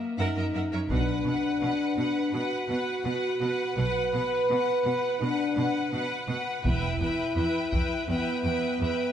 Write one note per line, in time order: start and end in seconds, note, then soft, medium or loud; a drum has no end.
0.00 0.18 A#3 medium
0.18 0.26 F#2 soft
0.18 0.90 D#4 medium
0.18 0.35 A#4 soft
0.18 0.35 E5 soft
0.18 0.35 F#5 soft
0.36 0.44 F#2 soft
0.36 0.44 A#4 soft
0.36 0.44 D#5 soft
0.36 0.45 E5 soft
0.54 0.62 F#2 soft
0.54 0.62 A#4 soft
0.54 0.61 E5 soft
0.54 0.63 F#5 soft
0.72 0.80 F#2 soft
0.72 0.79 A#4 soft
0.72 0.80 C#5 soft
0.72 0.79 E5 soft
0.90 1.23 B1 soft
0.90 0.98 B2 soft
0.90 2.33 D4 medium
0.90 1.26 B4 soft
0.90 1.25 F#5 soft
0.90 taiko soft
1.26 1.34 B2 soft
1.26 1.61 B4 soft
1.26 1.61 F#5 soft
1.62 1.70 B2 soft
1.62 1.97 B4 soft
1.62 1.97 F#5 soft
1.97 2.05 B2 soft
1.97 2.33 B4 soft
1.97 2.31 F#5 soft
1.97 2.32 F#5 soft
2.32 2.41 B2 soft
2.32 3.76 F#4 medium
2.32 2.69 B4 soft
2.32 2.68 F#5 soft
2.69 2.77 B2 soft
2.69 3.05 B4 soft
2.69 3.04 F#5 soft
2.69 3.03 F#5 soft
3.04 3.13 B2 soft
3.04 3.41 B4 soft
3.04 3.39 F#5 soft
3.04 3.41 F#5 soft
3.41 3.49 B2 soft
3.41 3.77 B4 soft
3.41 3.76 F#5 soft
3.41 3.77 F#5 soft
3.77 4.11 B1 soft
3.77 3.86 B2 soft
3.77 5.19 B4 medium
3.77 4.13 B4 soft
3.77 4.12 F#5 soft
4.13 4.22 B2 soft
4.13 4.50 B4 soft
4.13 4.48 F#5 soft
4.49 4.58 B2 soft
4.49 4.86 B4 soft
4.49 4.83 F#5 soft
4.49 4.84 F#5 soft
4.84 4.93 B2 soft
4.84 5.22 B4 soft
4.84 5.19 F#5 soft
4.84 5.20 F#5 soft
5.20 5.29 B2 soft
5.20 5.93 D4 medium
5.20 5.57 B4 soft
5.20 5.55 F#5 soft
5.56 5.65 B2 soft
5.56 5.93 B4 soft
5.56 5.90 F#5 soft
5.56 5.91 F#5 soft
5.91 6.01 B2 soft
5.91 6.29 B4 soft
5.91 6.26 F#5 soft
5.91 6.27 F#5 soft
6.27 6.37 B2 soft
6.27 6.63 B4 soft
6.27 6.63 F#5 soft
6.27 6.64 F#5 soft
6.64 6.98 E1 medium
6.64 6.72 E2 soft
6.64 8.04 E4 medium
6.64 7.00 B4 soft
6.64 7.00 E5 soft
6.64 6.99 G5 soft
6.64 taiko soft
7.00 7.08 E2 soft
7.00 7.36 B4 soft
7.00 7.35 E5 soft
7.00 7.36 G5 soft
7.37 7.45 E2 soft
7.37 7.72 B4 soft
7.37 7.72 E5 soft
7.37 7.71 G5 soft
7.72 7.81 E2 soft
7.72 8.08 B4 soft
7.72 8.08 E5 soft
7.72 8.08 G5 soft
7.72 taiko soft
8.08 8.17 E2 soft
8.08 9.12 B3 medium
8.08 8.44 B4 soft
8.08 8.43 E5 soft
8.08 8.43 G5 soft
8.45 8.53 E2 soft
8.45 8.80 B4 soft
8.45 8.80 E5 soft
8.45 8.80 G5 soft
8.80 8.88 E2 soft
8.80 9.12 B4 soft
8.80 9.12 E5 soft
8.80 9.12 G5 soft